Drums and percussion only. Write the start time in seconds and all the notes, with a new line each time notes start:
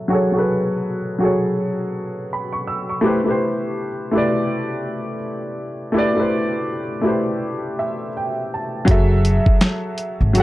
8.88 kick, closed hi-hat
9.25 closed hi-hat
9.46 kick
9.61 finger snap, snare, closed hi-hat
9.98 closed hi-hat
10.35 closed hi-hat